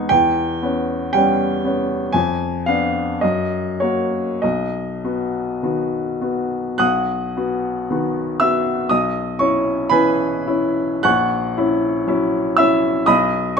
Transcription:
Already playing: E2 G#3 B3 D#4 G#5
0.09 E2 G5
0.63 B3 C#4
1.13 G3 B3 C#4 G5
1.65 B3 C#4
2.12 F2 G#5
2.66 B3 D4 F5
3.21 F#2 D#5
3.80 A#3 F#4 C#5
4.42 B1 D#5
5.04 B3 F#4
5.63 D#3 B3 F#4
6.21 B3 F#4
6.78 B1 F#5 D#6 F#6
7.37 B3 F#4
7.90 D#3 B3 F#4
8.40 B3 F#4 E5 E6
8.89 B1 D#5 D#6
9.39 C#4 E4 C#5 C#6
9.90 E3 C#4 E4 B4 G#5 B5
10.47 C#4 E4
11.03 A#1 F#5 C#6 F#6
11.57 C#4 E4
12.07 F#3 C#4 E4
12.57 C#4 E4 E5 E6
13.06 B1 D#5 B5 D#6

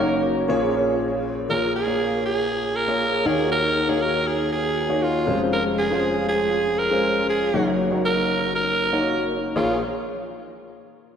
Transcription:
Already playing: F#1 F#2 A#4
0.00 A#3 C#4 D#4 F#4 C#5
0.48 A#1 A#2 A#3 C#4 F4 G#4 C#5
1.49 A#1 A#2 A#3 F4 G#4 A#4 C#5
1.76 G#4
1.86 A#3 F4 G#4 C#5
2.26 G#4
2.76 A#4
2.87 A#3 F4 G#4 C#5
3.25 D#2 D#3 A#3 D#4 F#4 G#4 C#5
3.52 A#4
3.88 A#3 D#4 F#4 G#4 C#5
4.02 A#4
4.27 G#4
4.52 G#4
4.88 A#3 D#4 F#4 C#5
5.02 F4
5.26 F1 F2 G#3 C#4 F4 C5
5.53 A#4
5.79 G#4
5.90 G#3 C#4 F4 C5
6.29 G#4
6.79 A#4
6.90 G#3 C#4 F4 C5
7.30 G#4
7.53 F#1 F#2 A#3 D#4 F#4 C#5
7.91 A#3 D#4 F#4 C#5
8.06 A#4
8.55 A#4
8.92 A#3 D#4 F#4 C#5
9.56 A#1 A#3 F4 G#4 C#5

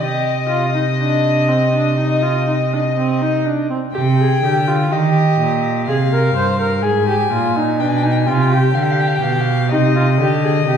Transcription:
0.01 C3 G4 D#5
0.49 F4
0.74 D#4
0.99 D4
1.48 C4
1.73 D4
1.98 D#4
2.22 F4
2.48 D#4
2.73 D4
2.97 C4
3.21 D#4
3.46 D4
3.70 C4
3.94 C3 G4 G5
4.19 G#4
4.42 D3 G4
4.68 F4
4.91 D#3 G4 D#5
5.40 A#2
5.87 C3 G#4 F5
6.13 A#4
6.35 G2 C5
6.60 A#4
6.83 G#2 G#4 G#5
7.09 G4
7.32 A#2 F4
7.57 D#4
7.80 B2 D4 G5
7.89 G#5
7.96 G5
8.03 D#4 G#5
8.11 G5
8.17 G#5
8.26 C3 F4 G5
8.34 G#5
8.42 G5
8.52 G4
8.74 D3 F5
8.82 G5
8.91 F5
9.01 G5
9.07 F5
9.15 G5
9.22 B2 F5
9.33 G5
9.41 F5
9.70 C3 D#4 D#5
9.96 F4
10.18 D3 G4
10.44 G#4
10.66 C3 G4

